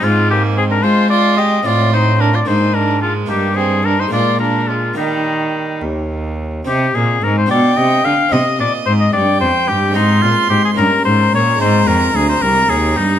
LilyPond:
<<
  \new Staff \with { instrumentName = "Oboe" } { \time 6/8 \key ees \major \tempo 4. = 73 f'8 g'8 aes'16 bes'16 c''8 d''8 ees''8 | d''8 c''8 bes'16 d''16 c''8 bes'8 f'8 | g'8 aes'8 bes'16 c''16 d''8 bes'8 f'8 | ees'4. r4. |
\key c \minor g'8 aes'8 bes'16 c''16 d''8 ees''8 f''8 | ees''8 d''8 c''16 ees''16 d''8 c''8 g'8 | ees'8 f'8 g'16 aes'16 bes'8 c''8 des''8 | c''8 bes'8 aes'16 c''16 bes'8 aes'8 ees'8 | }
  \new Staff \with { instrumentName = "Violin" } { \time 6/8 \key ees \major aes8 bes8 c'16 d'16 f'8 f'8 g'8 | f'8 ees'8 d'16 f'16 ees'8 d'8 aes8 | bes8 c'8 d'16 ees'16 f'8 d'8 aes8 | g4. r4. |
\key c \minor r4. g''4. | ees''4. g''4. | c'''4. bes''4.~ | bes''2. | }
  \new Staff \with { instrumentName = "Harpsichord" } { \time 6/8 \key ees \major <c' f'>2. | <c' ees'>4. <bes d'>4. | <bes ees'>4. <aes bes f'>4. | <bes ees'>2. |
\key c \minor <c' ees'>4. <d' f'>4. | <c' ees'>2. | <aes c' ees'>4. <bes des' ees'>4. | <aes c' ees'>2. | }
  \new Staff \with { instrumentName = "Harpsichord" } { \clef bass \time 6/8 \key ees \major aes,4. aes4. | a,4. aes,4. | g,4. bes,4. | ees4. ees,4. |
\key c \minor c8 bes,8 aes,8 b,8 c8 d8 | c8 bes,8 aes,8 g,8 f,8 g,8 | aes,8 bes,8 aes,8 g,8 aes,8 bes,8 | aes,8 f,8 d,8 c,8 ees,8 g,8 | }
  \new Staff \with { instrumentName = "Cello" } { \clef bass \time 6/8 \key ees \major aes,4. aes4. | a,4. aes,4. | g,4. bes,4. | ees4. ees,4. |
\key c \minor c8 bes,8 aes,8 b,8 c8 d8 | c8 bes,8 aes,8 g,8 f,8 g,8 | aes,8 bes,8 aes,8 g,8 aes,8 bes,8 | aes,8 f,8 d,8 c,8 ees,8 g,8 | }
>>